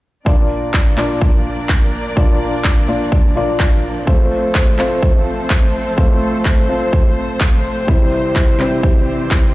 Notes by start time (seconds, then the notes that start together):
0.25 A#2 F3 A#3 D4 F4 A#4 D5, kick
0.74 kick, clap
0.96 A#2 A#3 D4 F4 D5, clap
1.21 kick
1.69 kick, clap
2.16 A#2 A#3 D4 F4 D5, kick
2.64 kick, clap
2.88 A#2 A#3 D4 F4 D5
3.12 kick
3.35 A#2 A#3 D4 F4 D5
3.60 kick, clap
4.06 A3 C4 F4 A4 C5, kick
4.55 kick, clap
4.78 A3 C4 F4 C5, clap
5.03 kick
5.50 kick, clap
5.97 A3 C4 F4 C5, kick
6.45 kick, clap
6.69 A3 C4 F4 C5
6.93 kick
7.41 kick, clap
7.87 C3 E3 G3 C4 E4 G4 C5, kick
8.36 kick, clap
8.58 C3 G3 C4 E4 C5, clap
8.83 kick
9.31 kick, clap